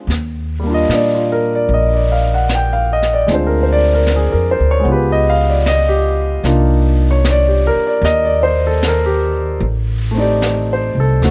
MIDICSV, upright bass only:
0, 0, Header, 1, 3, 480
1, 0, Start_track
1, 0, Key_signature, -3, "minor"
1, 0, Tempo, 796813
1, 48, Time_signature, 4, 2, 24, 8
1, 6811, End_track
2, 0, Start_track
2, 0, Title_t, "Upright bass"
2, 0, Program_c, 0, 32
2, 43, Note_on_c, 0, 39, 67
2, 508, Note_off_c, 0, 39, 0
2, 535, Note_on_c, 0, 46, 58
2, 994, Note_off_c, 0, 46, 0
2, 1016, Note_on_c, 0, 34, 69
2, 1950, Note_off_c, 0, 34, 0
2, 1975, Note_on_c, 0, 38, 69
2, 2586, Note_off_c, 0, 38, 0
2, 2610, Note_on_c, 0, 41, 53
2, 2758, Note_off_c, 0, 41, 0
2, 2772, Note_on_c, 0, 38, 58
2, 2918, Note_off_c, 0, 38, 0
2, 2922, Note_on_c, 0, 37, 70
2, 3854, Note_off_c, 0, 37, 0
2, 3877, Note_on_c, 0, 36, 75
2, 4654, Note_off_c, 0, 36, 0
2, 4828, Note_on_c, 0, 39, 78
2, 5768, Note_off_c, 0, 39, 0
2, 5785, Note_on_c, 0, 33, 80
2, 6574, Note_off_c, 0, 33, 0
2, 6596, Note_on_c, 0, 36, 63
2, 6750, Note_off_c, 0, 36, 0
2, 6759, Note_on_c, 0, 38, 83
2, 6811, Note_off_c, 0, 38, 0
2, 6811, End_track
3, 0, Start_track
3, 0, Title_t, "Muted upright bass strokes"
3, 4671, Note_on_c, 9, 29, 37
3, 4732, Note_off_c, 9, 29, 0
3, 6811, End_track
0, 0, End_of_file